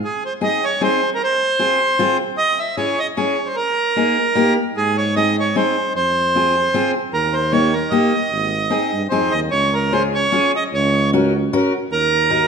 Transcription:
0.05 accordion G#4
0.26 accordion C5
0.41 steel-string acoustic guitar C4 D#4 G#4, accordion D#5
0.64 accordion C#5
0.81 steel-string acoustic guitar C4 D#4 G#4, accordion C5
1.15 accordion A#4
1.24 accordion C5
1.59 steel-string acoustic guitar C4 F4 G#4
1.99 steel-string acoustic guitar C4 F4 G#4
2.38 accordion D#5
2.59 accordion E5
2.77 steel-string acoustic guitar C#4 E4 G#4, accordion C#5
2.99 accordion D#5
3.17 steel-string acoustic guitar C#4 E4 G#4, accordion C#5
3.46 accordion C5
3.56 accordion A#4
3.96 steel-string acoustic guitar A#3 D#4 G#4
4.35 steel-string acoustic guitar A#3 D#4 G4
4.76 tuba G#2, accordion G#4
4.98 accordion C#5
5.16 steel-string acoustic guitar C4 D#4 G#4, accordion D#5
5.40 accordion C#5
5.56 steel-string acoustic guitar C4 D#4 G#4, accordion C5
5.96 tuba F2, accordion C5
6.35 steel-string acoustic guitar C4 F4 G#4
6.74 steel-string acoustic guitar C4 F4 G#4
7.13 tuba D#2, accordion A#4
7.34 accordion C5
7.52 steel-string acoustic guitar A#3 D#4 G4, accordion C#5
7.73 accordion A#4
7.90 steel-string acoustic guitar A#3 D#4 G4, accordion D#5
8.32 tuba G#1
8.70 steel-string acoustic guitar C4 D#4 G#4
8.93 tuba G2
9.10 tuba F2, steel-string acoustic guitar C4 D#4 G#4, accordion C5
9.31 tuba D#2, accordion D#5
9.51 tuba C#2, accordion C#5
9.74 accordion A#4
9.93 steel-string acoustic guitar C#4 F4 G#4, accordion C5
10.15 accordion C#5
10.32 steel-string acoustic guitar C#4 F4 G#4
10.56 accordion D#5
10.73 tuba C#2, accordion C#5
11.13 steel-string acoustic guitar C#4 F#4 A#4
11.53 steel-string acoustic guitar C#4 F#4 A#4
11.91 tuba D#2, accordion A#4
12.30 steel-string acoustic guitar D#4 F#4 A#4

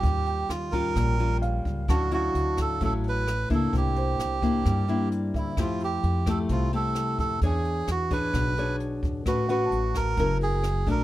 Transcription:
Already playing: nylon-string guitar G3 C#4 F4, melodica G4
0.03 upright bass D#2, nylon-string guitar D#3, kick, closed hi-hat
0.26 grand piano G5, closed hi-hat
0.49 upright bass D#2, melodica F4, cross-stick, closed hi-hat
0.72 nylon-string guitar G3 C#4 F4, melodica A#4, kick, closed hi-hat
0.95 upright bass A#1, nylon-string guitar A#2, kick, cross-stick, closed hi-hat
1.19 nylon-string guitar G3 C#4 F4, closed hi-hat
1.42 grand piano F5, closed hi-hat
1.65 upright bass C#2, kick, closed hi-hat
1.88 upright bass D2, nylon-string guitar D3 F#3 C#4 E4, melodica F#4, grand piano A5, kick, cross-stick, closed hi-hat
2.11 nylon-string guitar F#3 C#4 E4, melodica F#4, closed hi-hat
2.35 upright bass D2, closed hi-hat
2.57 kick, cross-stick, closed hi-hat
2.61 melodica A4
2.81 upright bass A1, nylon-string guitar A2 F#3 C#4 E4, melodica A4, kick, closed hi-hat
3.04 closed hi-hat
3.08 melodica B4
3.27 cross-stick, closed hi-hat
3.50 upright bass C#2, nylon-string guitar A#3 D4 E4, kick, closed hi-hat
3.54 melodica A4
3.73 upright bass C2, nylon-string guitar C3, kick, closed hi-hat
3.77 melodica G4
3.96 grand piano C5, closed hi-hat
4.19 upright bass C2, cross-stick, closed hi-hat
4.42 nylon-string guitar A#3 D4 E4, kick, closed hi-hat
4.65 upright bass G2, nylon-string guitar G3, kick, cross-stick, closed hi-hat
4.88 nylon-string guitar A#3 D4 E4, closed hi-hat
5.12 closed hi-hat
5.34 upright bass D2, melodica E4, grand piano E5, kick, closed hi-hat
5.57 upright bass F2, nylon-string guitar F3 A3 E4 G4, melodica F4, kick, cross-stick, closed hi-hat
5.80 melodica G4, closed hi-hat
6.03 upright bass F2, closed hi-hat
6.26 nylon-string guitar A3 E4 G4, melodica A4, kick, cross-stick, closed hi-hat
6.49 upright bass C2, nylon-string guitar C3, melodica F4, kick, closed hi-hat
6.73 nylon-string guitar A3 E4 G4, melodica A4, closed hi-hat
6.95 cross-stick, closed hi-hat
7.18 upright bass F2, melodica A4, kick, closed hi-hat
7.42 upright bass E2, nylon-string guitar E3 D4 G#4 C#5, melodica G#4, kick, closed hi-hat
7.65 closed hi-hat
7.87 upright bass E2, melodica F#4, cross-stick, closed hi-hat
8.11 nylon-string guitar D4 G#4 C#5, melodica B4, kick, closed hi-hat
8.34 upright bass B1, nylon-string guitar B2, kick, cross-stick, closed hi-hat
8.57 nylon-string guitar D4 G#4 C#5, closed hi-hat
8.80 closed hi-hat
9.03 upright bass E2, kick, closed hi-hat
9.26 upright bass A1, nylon-string guitar A3 C#4 F#4 B4, melodica F#4, kick, cross-stick, closed hi-hat
9.49 nylon-string guitar C#4 F#4 B4, melodica F#4, grand piano F#5, closed hi-hat
9.65 grand piano A5
9.71 upright bass A1, closed hi-hat
9.95 melodica A#4, kick, cross-stick, closed hi-hat
10.17 upright bass F#1, nylon-string guitar F#3 C#4 E4 A#4, kick, closed hi-hat
10.41 melodica G#4, closed hi-hat
10.63 cross-stick, closed hi-hat
10.86 upright bass A#1, nylon-string guitar A3 D4 F#4, kick, closed hi-hat
10.91 melodica A#4

